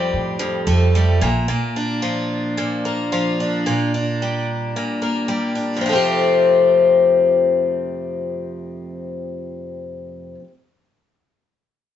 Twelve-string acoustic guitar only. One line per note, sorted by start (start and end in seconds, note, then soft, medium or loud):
0.00 0.38 F2 medium
0.00 0.94 G3 medium
0.00 1.28 C4 medium
0.39 1.21 F2 medium
0.67 1.27 A3 medium
0.95 1.28 G3 medium
1.21 1.47 A#2 medium
1.48 2.56 A#2 medium
1.76 3.40 D4 medium
2.02 3.11 F3 medium
2.58 3.65 A#2 medium
2.85 5.01 A#3 medium
3.12 3.72 F3 medium
3.40 3.94 D4 medium
3.66 4.75 A#2 medium
3.94 5.54 D4 soft
4.22 5.28 G3 medium
4.76 5.81 A#2 medium
5.02 5.89 A#3 medium
5.28 5.85 G3 medium
5.55 5.89 D4 soft
5.76 10.35 F2 medium
5.81 10.39 C3 medium
5.86 10.44 F3 medium
5.86 10.47 A3 medium
5.93 10.51 C4 medium
5.93 10.53 G4 medium